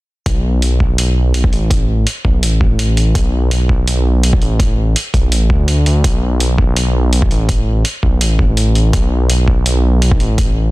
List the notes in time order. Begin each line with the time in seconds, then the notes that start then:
0.26 B1, kick, closed hi-hat
0.62 closed hi-hat
0.80 B1, kick
0.98 closed hi-hat
1.34 closed hi-hat
1.44 kick
1.53 A1, closed hi-hat
1.71 kick, closed hi-hat
2.07 closed hi-hat
2.25 B1, kick
2.43 A1, closed hi-hat
2.61 kick
2.79 closed hi-hat
2.97 closed hi-hat
3.15 B1, kick, closed hi-hat
3.51 closed hi-hat
3.69 B1, kick
3.88 closed hi-hat
4.23 closed hi-hat
4.33 kick
4.42 A1, closed hi-hat
4.60 kick, closed hi-hat
4.96 closed hi-hat
5.14 B1, kick, closed hi-hat
5.32 A1, closed hi-hat
5.50 D2, kick
5.68 closed hi-hat
5.86 D2, closed hi-hat
6.04 B1, kick, closed hi-hat
6.40 closed hi-hat
6.58 B1, kick
6.77 closed hi-hat
7.13 closed hi-hat
7.22 kick
7.30 A1, closed hi-hat
7.49 kick, closed hi-hat
7.85 closed hi-hat
8.03 B1, kick
8.21 A1, closed hi-hat
8.39 kick
8.57 closed hi-hat
8.75 closed hi-hat
8.93 B1, kick, closed hi-hat
9.30 closed hi-hat
9.48 B1, kick
9.66 closed hi-hat
10.02 closed hi-hat
10.11 kick
10.20 A1, closed hi-hat
10.38 kick, closed hi-hat